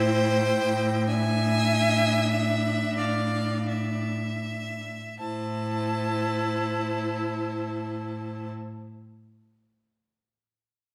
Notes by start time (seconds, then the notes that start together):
Already playing: A2 E4 C5 G5
1.07 D4 E5 G#5
2.31 E5
2.98 D5 F5
3.69 E5
5.20 A2 E4 C5 A5